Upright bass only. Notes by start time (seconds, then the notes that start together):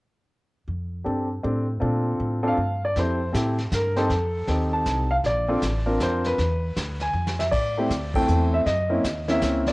0.68 F2
1.06 G2
1.44 A2
1.82 A#2
2.20 A2
2.57 G2
2.96 F2
3.34 A2
3.72 G2
4.10 F2
4.48 D#2
4.86 C2
5.24 A#1
5.62 A1
6.00 F2
6.38 E2
6.77 D2
7.13 F2
7.52 A2
7.90 D2
8.28 E2
8.66 F#2
9.04 D#2
9.42 C#2